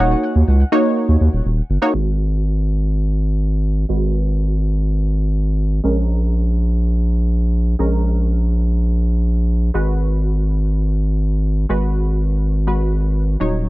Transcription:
Already playing: F#5
0.00 D#1 A#3 D#4 F#4 C#5
0.36 D#2
0.48 C#2
0.72 A#3 D#4 F#4 C#5
1.09 D#2
1.21 D#2
1.33 D#1
1.45 D#1
1.70 G1
1.82 A#3 D#4 F#4 C#5
1.94 G#1 G#3
3.89 G#1 G#3 F#4 B4
5.84 A#1 G#3 C#4 A#4
7.79 A#1 G#3 C#4 A#4
9.74 G#1 G#3 F#4 B4
11.69 G#1 G#3 F#4 B4
12.67 G#3 F#4 B4
13.40 D#1 F#3 D#4 C#5

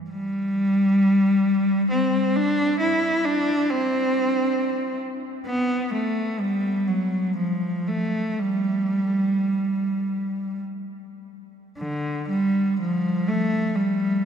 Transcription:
0.10 G3
1.91 C4
2.36 D4
2.80 E4
3.25 D4
3.70 C4
5.46 B3
5.93 A3
6.40 G3
6.87 F#3
7.36 F3
7.87 A3
8.39 G3
11.78 D3
12.29 G3
12.80 F3
13.28 A3
13.76 G3

